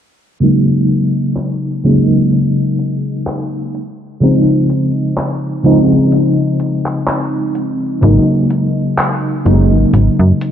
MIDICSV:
0, 0, Header, 1, 4, 480
1, 0, Start_track
1, 0, Tempo, 952381
1, 207, Time_signature, 4, 2, 24, 8
1, 5301, End_track
2, 0, Start_track
2, 0, Title_t, "FM electric piano"
2, 0, Program_c, 0, 5
2, 202, Note_on_c, 0, 49, 77
2, 206, Note_on_c, 0, 54, 67
2, 210, Note_on_c, 0, 56, 70
2, 214, Note_on_c, 0, 58, 71
2, 218, Note_on_c, 0, 63, 84
2, 299, Control_c, 0, 64, 127
2, 898, Note_off_c, 0, 49, 0
2, 900, Note_off_c, 0, 54, 0
2, 902, Note_off_c, 0, 56, 0
2, 904, Note_off_c, 0, 58, 0
2, 906, Note_off_c, 0, 63, 0
2, 926, Note_on_c, 0, 49, 82
2, 928, Note_on_c, 0, 54, 70
2, 930, Note_on_c, 0, 56, 75
2, 932, Note_on_c, 0, 58, 73
2, 934, Note_on_c, 0, 63, 86
2, 993, Note_off_c, 0, 49, 0
2, 994, Note_off_c, 0, 54, 0
2, 996, Note_off_c, 0, 56, 0
2, 996, Note_off_c, 0, 58, 0
2, 997, Note_off_c, 0, 63, 0
2, 1892, Control_c, 0, 64, 0
2, 1971, Control_c, 0, 64, 127
2, 2118, Note_on_c, 0, 49, 69
2, 2122, Note_on_c, 0, 53, 65
2, 2126, Note_on_c, 0, 56, 66
2, 2130, Note_on_c, 0, 60, 66
2, 2134, Note_on_c, 0, 63, 79
2, 2816, Note_off_c, 0, 49, 0
2, 2818, Note_off_c, 0, 53, 0
2, 2820, Note_off_c, 0, 56, 0
2, 2822, Note_off_c, 0, 60, 0
2, 2824, Note_off_c, 0, 63, 0
2, 2838, Note_on_c, 0, 49, 90
2, 2843, Note_on_c, 0, 53, 82
2, 2846, Note_on_c, 0, 56, 85
2, 2850, Note_on_c, 0, 60, 80
2, 2854, Note_on_c, 0, 63, 102
2, 4016, Note_off_c, 0, 49, 0
2, 4019, Note_off_c, 0, 53, 0
2, 4020, Note_off_c, 0, 56, 0
2, 4022, Note_off_c, 0, 60, 0
2, 4024, Note_off_c, 0, 63, 0
2, 4039, Note_on_c, 0, 49, 78
2, 4043, Note_on_c, 0, 54, 72
2, 4044, Note_on_c, 0, 56, 72
2, 4050, Note_on_c, 0, 58, 75
2, 4052, Control_c, 0, 64, 0
2, 4053, Note_on_c, 0, 63, 88
2, 4140, Control_c, 0, 64, 127
2, 4736, Note_off_c, 0, 49, 0
2, 4738, Note_off_c, 0, 54, 0
2, 4739, Note_off_c, 0, 56, 0
2, 4742, Note_off_c, 0, 58, 0
2, 4744, Note_off_c, 0, 63, 0
2, 4762, Note_on_c, 0, 49, 81
2, 4765, Note_on_c, 0, 54, 76
2, 4766, Note_on_c, 0, 56, 77
2, 4768, Note_on_c, 0, 58, 74
2, 4770, Note_on_c, 0, 63, 94
2, 4831, Note_off_c, 0, 49, 0
2, 4833, Note_off_c, 0, 54, 0
2, 4833, Note_off_c, 0, 56, 0
2, 4834, Note_off_c, 0, 58, 0
2, 4835, Note_off_c, 0, 63, 0
2, 5301, End_track
3, 0, Start_track
3, 0, Title_t, "FM bass"
3, 0, Program_c, 1, 39
3, 4047, Note_on_c, 1, 32, 99
3, 4126, Note_off_c, 1, 32, 0
3, 4767, Note_on_c, 1, 30, 80
3, 4899, Note_on_c, 1, 32, 81
3, 4907, Note_off_c, 1, 30, 0
3, 4965, Note_off_c, 1, 32, 0
3, 5007, Note_on_c, 1, 32, 82
3, 5086, Note_off_c, 1, 32, 0
3, 5138, Note_on_c, 1, 42, 90
3, 5204, Note_off_c, 1, 42, 0
3, 5301, End_track
4, 0, Start_track
4, 0, Title_t, "Drums"
4, 208, Note_on_c, 9, 42, 74
4, 258, Note_off_c, 9, 42, 0
4, 447, Note_on_c, 9, 42, 61
4, 497, Note_off_c, 9, 42, 0
4, 687, Note_on_c, 9, 39, 109
4, 687, Note_on_c, 9, 42, 71
4, 737, Note_off_c, 9, 39, 0
4, 737, Note_off_c, 9, 42, 0
4, 928, Note_on_c, 9, 42, 61
4, 979, Note_off_c, 9, 42, 0
4, 1168, Note_on_c, 9, 42, 74
4, 1218, Note_off_c, 9, 42, 0
4, 1407, Note_on_c, 9, 42, 63
4, 1457, Note_off_c, 9, 42, 0
4, 1647, Note_on_c, 9, 39, 116
4, 1647, Note_on_c, 9, 42, 82
4, 1698, Note_off_c, 9, 39, 0
4, 1698, Note_off_c, 9, 42, 0
4, 1888, Note_on_c, 9, 42, 61
4, 1938, Note_off_c, 9, 42, 0
4, 2127, Note_on_c, 9, 42, 76
4, 2177, Note_off_c, 9, 42, 0
4, 2367, Note_on_c, 9, 42, 64
4, 2417, Note_off_c, 9, 42, 0
4, 2607, Note_on_c, 9, 39, 110
4, 2607, Note_on_c, 9, 42, 78
4, 2657, Note_off_c, 9, 39, 0
4, 2657, Note_off_c, 9, 42, 0
4, 2846, Note_on_c, 9, 42, 60
4, 2896, Note_off_c, 9, 42, 0
4, 3085, Note_on_c, 9, 42, 78
4, 3136, Note_off_c, 9, 42, 0
4, 3325, Note_on_c, 9, 42, 64
4, 3375, Note_off_c, 9, 42, 0
4, 3457, Note_on_c, 9, 39, 37
4, 3507, Note_off_c, 9, 39, 0
4, 3565, Note_on_c, 9, 39, 119
4, 3565, Note_on_c, 9, 42, 81
4, 3615, Note_off_c, 9, 39, 0
4, 3615, Note_off_c, 9, 42, 0
4, 3807, Note_on_c, 9, 42, 66
4, 3857, Note_off_c, 9, 42, 0
4, 4046, Note_on_c, 9, 42, 76
4, 4096, Note_off_c, 9, 42, 0
4, 4286, Note_on_c, 9, 42, 63
4, 4337, Note_off_c, 9, 42, 0
4, 4526, Note_on_c, 9, 39, 116
4, 4526, Note_on_c, 9, 42, 73
4, 4577, Note_off_c, 9, 39, 0
4, 4577, Note_off_c, 9, 42, 0
4, 4767, Note_on_c, 9, 42, 61
4, 4818, Note_off_c, 9, 42, 0
4, 5008, Note_on_c, 9, 42, 78
4, 5058, Note_off_c, 9, 42, 0
4, 5249, Note_on_c, 9, 42, 62
4, 5299, Note_off_c, 9, 42, 0
4, 5301, End_track
0, 0, End_of_file